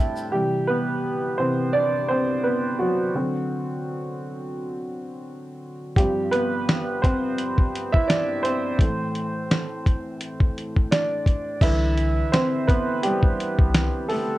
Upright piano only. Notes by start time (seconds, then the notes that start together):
Already playing: A2 D3 G3 C4 E4 E5 G5 A5
0.32 C3 E3 G3 G4
0.67 B3 B4
1.38 C3 E3 C4 B4 C5
1.73 D4 D5
2.09 C4 C5
2.44 B3 B4
2.79 F#3 F#4
3.15 D3 F#3 C4
5.96 G2 F3 G3 C4 G4
6.31 B3 B4
7.02 C4 C5
7.92 E4 E5
8.08 D4 D5
8.43 C4 C5
8.80 A2 E3 A3
10.91 D4 D5
11.62 D3 E3 E4 B4 E5
12.32 C4 C5
12.67 B3 B4
13.03 G3 G4
14.08 A3 A4